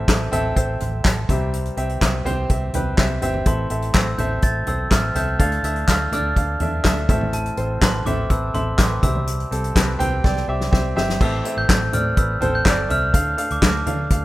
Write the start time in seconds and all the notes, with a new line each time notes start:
Already playing: A2 E3 C4 A4 E5
0.08 A1 C4 A4 E5, kick, snare, clap, closed hi-hat
0.32 A1 C4 A4 E5, closed hi-hat, floor tom
0.56 A1 C4 A4 C5, kick, closed hi-hat
0.80 A1 C6, closed hi-hat, floor tom
1.04 A1 A5, kick, snare, clap, closed hi-hat
1.29 C2 C3 G3 C4 G4 E5, kick, closed hi-hat, floor tom
1.53 closed hi-hat
1.65 closed hi-hat
1.77 C2 C4 G4 E5, closed hi-hat
1.89 closed hi-hat
2.01 C2 C4 G4 E5, kick, snare, clap, closed hi-hat
2.25 C2 C4 G4 C5, closed hi-hat, floor tom
2.49 C2 C4 G4 E5, kick, closed hi-hat
2.73 C2 C4 G4 B4, closed hi-hat, floor tom
2.98 C2 C4 G4 E5, kick, snare, clap, closed hi-hat
3.21 G1 C4 G4 E5, closed hi-hat, floor tom
3.34 floor tom
3.46 A1 A2 E3 C4 A4 E5 C6, kick, closed hi-hat
3.70 A1 C4 A4 E5, closed hi-hat
3.82 closed hi-hat
3.94 A1 C4 A4 C5 E6, kick, snare, clap, closed hi-hat
4.18 A1 C4 A4 E5 G6, closed hi-hat, floor tom
4.42 A1 C4 A4 E5 A6, kick, closed hi-hat
4.66 B1 C4 A4 C5 E6, closed hi-hat, floor tom
4.91 A1 C4 A4 E5 F6, kick, snare, clap, closed hi-hat
5.15 C2 C4 A4 E5 G6, closed hi-hat, floor tom
5.39 D2 A2 D4 A4 F5 A6, kick, closed hi-hat
5.52 closed hi-hat
5.63 D2 D4 A4 E5 E6, closed hi-hat
5.76 closed hi-hat
5.88 D2 D4 A4 F5 F6, kick, snare, clap, closed hi-hat
6.12 D2 D4 A4 D5 F6, closed hi-hat, floor tom
6.36 D2 D4 A4 F5, kick, closed hi-hat
6.60 E2 D4 A4 E5, closed hi-hat, floor tom
6.84 D2 D4 A4 E5, kick, snare, clap, closed hi-hat
7.09 A1 A2 E3 C4 A4 E5, kick, closed hi-hat, floor tom
7.21 floor tom
7.33 A5, closed hi-hat
7.46 closed hi-hat
7.57 A1 C4 A4 C5, closed hi-hat
7.81 A1 C4 A4 B4 C6, kick, snare, clap, closed hi-hat
8.05 A1 C4 A4 E5 D6, closed hi-hat, floor tom
8.30 A1 C4 A4 B4 E6, kick, closed hi-hat
8.54 A1 C4 A4 E5 C6, closed hi-hat, floor tom
8.78 A1 C4 A4 B4 D6, kick, snare, clap, closed hi-hat
9.03 C2 C3 G3 C4 G4 E5 E6, kick, closed hi-hat, floor tom
9.15 floor tom
9.27 closed hi-hat
9.40 closed hi-hat
9.51 C2 C4 G4 A4, closed hi-hat
9.64 closed hi-hat
9.75 C2 C4 G4 B4, kick, snare, clap, closed hi-hat
9.99 C2 C4 G4 G5, closed hi-hat, floor tom
10.24 C2 C4 G4 D5, kick, snare
10.36 snare
10.48 C2 C4 G4 E5 D6
10.61 snare
10.71 C2 C4 G4 E5, kick, snare
10.96 G1 C4 G4 E5, snare
11.09 snare
11.20 A1 A2 E3 C4 A4 E5 E6, kick, crash
11.44 C4 A4 E5, closed hi-hat
11.57 A1 G6
11.68 A1 C4 A4 C5, kick, snare, clap, closed hi-hat
11.93 A2 C4 A4 D5 F6, closed hi-hat, floor tom
12.17 A1 C4 A4 B4 E6, kick, closed hi-hat
12.41 A1 C4 A4 C5, closed hi-hat, floor tom
12.55 G6
12.64 G1 C4 A4 D5, kick, snare, clap, closed hi-hat
12.89 C2 C4 A4 E5 F6, closed hi-hat, floor tom
13.13 D2 A2 D4 A4 F5, kick, closed hi-hat
13.37 D4 A4 F5, closed hi-hat
13.50 D2 D6, closed hi-hat
13.61 D2 D4 A4 F5 D6, kick, snare, clap, closed hi-hat
13.86 D3 D4 A4 F5, closed hi-hat, floor tom
14.10 D2 D4 A4 F5, kick, closed hi-hat